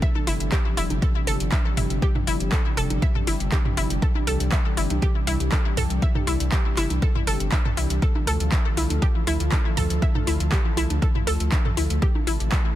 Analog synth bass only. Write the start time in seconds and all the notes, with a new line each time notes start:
0.27 G1
0.40 G1
0.77 F1
0.90 G1
1.27 G1
1.40 G1
1.77 G1
1.90 G1
2.27 G1
2.40 G1
2.77 F1
2.90 G1
3.27 G1
3.40 G1
3.77 G1
3.90 G1
4.27 C2
4.40 C2
4.77 G1
4.90 C2
5.27 C2
5.40 C2
5.77 C2
5.90 C2
6.27 C2
6.40 C2
6.77 G1
6.90 C2
7.27 G1
7.40 G1
7.77 C2
7.90 C2
8.27 D2
8.40 D2
8.77 C2
8.90 D2
9.27 D2
9.40 D2
9.77 D2
9.90 D2
10.27 D2
10.40 D2
10.77 C2
10.90 D2
11.27 D2
11.40 D2
11.77 D2
11.90 D2
12.27 A1
12.40 A1